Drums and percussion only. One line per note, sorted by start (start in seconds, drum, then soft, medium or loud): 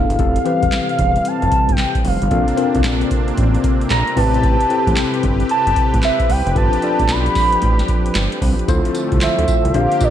0.10 closed hi-hat medium
0.19 kick loud
0.19 closed hi-hat medium
0.36 closed hi-hat medium
0.46 closed hi-hat medium
0.63 kick loud
0.63 closed hi-hat soft
0.72 snare loud
0.72 clap loud
0.72 closed hi-hat medium
0.89 closed hi-hat medium
0.99 kick medium
0.99 closed hi-hat medium
1.16 closed hi-hat medium
1.25 closed hi-hat medium
1.42 closed hi-hat medium
1.52 kick medium
1.52 closed hi-hat medium
1.69 kick loud
1.69 closed hi-hat soft
1.78 snare loud
1.78 clap medium
1.78 closed hi-hat medium
1.95 kick medium
1.95 closed hi-hat medium
2.05 open hi-hat medium
2.22 closed hi-hat medium
2.31 kick loud
2.31 closed hi-hat medium
2.48 closed hi-hat medium
2.57 closed hi-hat medium
2.75 kick loud
2.75 closed hi-hat medium
2.84 snare loud
2.84 clap medium
2.84 closed hi-hat medium
3.01 closed hi-hat medium
3.11 kick medium
3.11 closed hi-hat medium
3.28 closed hi-hat medium
3.37 kick medium
3.37 closed hi-hat medium
3.55 closed hi-hat medium
3.64 kick medium
3.64 closed hi-hat medium
3.81 closed hi-hat soft
3.90 snare loud
3.90 clap medium
3.90 closed hi-hat medium
4.07 closed hi-hat medium
4.17 kick medium
4.17 open hi-hat medium
4.34 closed hi-hat medium
4.43 kick loud
4.43 closed hi-hat medium
4.61 closed hi-hat medium
4.70 closed hi-hat medium
4.87 kick medium
4.87 closed hi-hat medium
4.97 snare loud
4.97 clap medium
4.97 closed hi-hat medium
5.14 closed hi-hat medium
5.23 kick loud
5.23 closed hi-hat medium
5.40 closed hi-hat medium
5.49 closed hi-hat medium
5.67 closed hi-hat medium
5.76 kick medium
5.76 closed hi-hat medium
5.93 kick medium
5.93 closed hi-hat medium
6.02 snare loud
6.02 clap medium
6.02 closed hi-hat medium
6.20 kick medium
6.20 closed hi-hat soft
6.30 open hi-hat medium
6.47 closed hi-hat medium
6.56 kick loud
6.56 closed hi-hat medium
6.73 closed hi-hat medium
6.82 closed hi-hat medium
6.99 kick medium
6.99 closed hi-hat medium
7.09 snare loud
7.09 clap medium
7.09 closed hi-hat medium
7.26 closed hi-hat medium
7.35 kick medium
7.35 snare medium
7.35 open hi-hat medium
7.52 closed hi-hat medium
7.62 kick medium
7.62 closed hi-hat medium
7.79 snare medium
7.79 closed hi-hat medium
7.88 kick loud
7.88 closed hi-hat medium
8.06 closed hi-hat medium
8.15 snare loud
8.15 clap medium
8.15 closed hi-hat medium
8.32 closed hi-hat medium
8.42 kick medium
8.42 open hi-hat medium
8.59 closed hi-hat medium
8.68 kick loud
8.68 closed hi-hat medium
8.68 tambourine medium
8.85 closed hi-hat medium
8.95 closed hi-hat medium
8.95 tambourine medium
9.12 kick loud
9.12 closed hi-hat medium
9.21 snare loud
9.21 clap loud
9.21 closed hi-hat medium
9.21 tambourine medium
9.39 closed hi-hat medium
9.48 kick medium
9.48 closed hi-hat medium
9.48 tambourine medium
9.65 closed hi-hat medium
9.74 closed hi-hat medium
9.92 closed hi-hat medium
10.01 kick medium
10.01 closed hi-hat medium
10.01 tambourine medium